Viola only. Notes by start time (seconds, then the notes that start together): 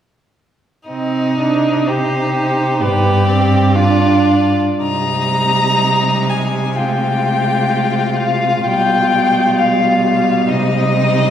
0.89 C4
1.39 D4
1.88 D#4
2.82 B3
3.27 C4
3.75 D4
4.82 G3
6.78 G#3
8.68 G3